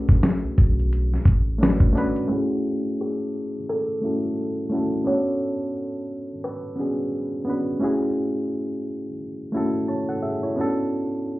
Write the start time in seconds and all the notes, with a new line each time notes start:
Already playing: A3 C#4 D4 F#4 B4
0.09 kick
0.23 snare, closed hi-hat
0.44 B1
0.58 B1, kick, closed hi-hat
0.79 closed hi-hat
0.93 closed hi-hat
1.14 snare
1.25 A1, kick, closed hi-hat
1.58 A3 C#4 D4 F#4
1.63 B4, snare, closed hi-hat
1.80 kick
1.93 A3 C#4 D4 F#4
1.97 B4, closed hi-hat
2.16 closed hi-hat
2.28 A3 C#4 E4 F#4
2.33 G#4
3.01 G#4
3.69 A4
4.01 A3 C#4 E4 F#4
4.06 A4
4.70 A3 C#4 E4 F#4
4.75 A4
5.04 B3 C#4 D4 F#4 C#5
5.09 A4
6.44 B4
6.76 B3 C#4 D4 F#4
6.81 G#4
7.45 B3 C#4 D4 F#4
7.50 B4
7.79 A3 C#4 E4 F#4
7.84 G#4
9.52 A3 C#4 E4 F#4
9.57 A4
9.88 C#5 A5
10.09 A4 F#5
10.23 G#4 E5
10.43 E4 C#5
10.56 B3 C#4 D4 F#4
10.61 A4